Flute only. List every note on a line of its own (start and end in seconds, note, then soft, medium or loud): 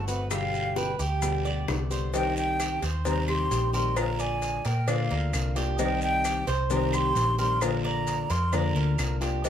0.08 0.29 F#5 medium
0.31 0.78 F5 medium
0.77 0.99 G5 medium
1.00 1.64 G5 medium
2.14 2.35 G5 loud
2.37 2.79 G5 loud
3.06 3.27 A#5 medium
3.29 3.71 C6 loud
3.74 3.99 C6 loud
3.97 4.22 A#5 loud
4.21 4.68 G#5 loud
4.66 4.90 G5 medium
4.89 5.57 F5 medium
5.80 6.01 G5 loud
6.03 6.45 G5 loud
6.72 6.96 A#5 loud
6.94 7.39 C6 loud
7.40 7.64 C6 loud
7.62 7.84 A#5 medium
7.85 8.32 A#5 loud
8.31 8.55 C6 medium
8.54 9.22 A#5 medium
9.45 9.49 G5 medium